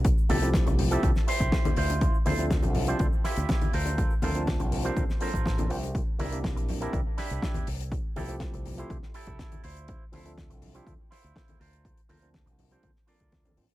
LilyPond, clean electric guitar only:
\new Staff \with { instrumentName = "Clean electric guitar" } { \time 4/4 \key d \minor \tempo 4 = 122 r8 <e' g' a'>8 r8. <e' g' a'>16 r8 <e' g' c''>4 <e' f' c''>8~ | <e' f' c''>16 r16 <e' f' c''>8 r8. <e' f' c''>16 r8 <e' f' g'>4 <f' a' bes' c''>8~ | <f' a' bes' c''>16 r16 <f' a' bes' c''>8 r8. <f' a' bes' c''>16 r8 <f' a' bes' c''>4 r8 | r8 <d' e' bes'>8 r8. <d' e' bes'>16 r8 <d' e' g'>4 r8 |
r8 <e' g' a'>8 r8. <e' g' c''>16 r8 <e' g' a'>4 <e' f' c''>8~ | <e' f' c''>16 r16 <e' f' c''>8 r8. <e' f' c''>16 r8 <e' f' c''>4 <f' a' bes' c''>8~ | <f' a' bes' c''>16 r16 <f' a' bes' c''>8 r8. <f' a' bes' c''>16 r8 <f' a' bes' d''>4 r8 | }